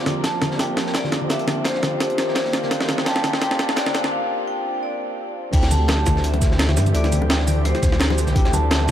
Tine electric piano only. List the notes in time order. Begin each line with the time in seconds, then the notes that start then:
Already playing: A#3 C4 D4 F4 G4
0.57 A#3 C4 D4 F4 G4
1.28 A#3 C4 D4 F4 G4
1.99 A#3 C4 D4 F4 G4
2.69 A#3 C4 D4 F4 G4
3.04 A#3 C4 D4 F4 G4
3.40 A#3 C4 D4 F4 G4
3.75 A#3 C4 D4 F4 G4
5.52 A3 C4 D4 E4 G4
6.93 A3 C4 D4 E4 G4
8.34 A3 C4 D4 E4 G4